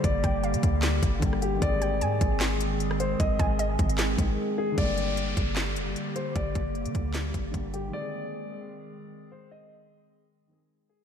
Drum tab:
HH |x-x-xxx-x-x-x-x-|x-x-x-x-x-x-x-x-|x-x-x-xxx-x-----|x-x-x-x-x-x-x-x-|
CP |--------x-------|--------x-------|--------x-------|--------x-------|
SD |--------o----r--|--------o----r--|--------o-------|--------o-------|
BD |o-o---o---o-o---|o-----o---------|o-o---o---o-----|o-----o---------|

HH |x-x-xxx-x-x-x-x-|----------------|----------------|
CP |--------x-------|----------------|----------------|
SD |--------o-------|----------------|----------------|
BD |o-o---o---o-o---|----------------|----------------|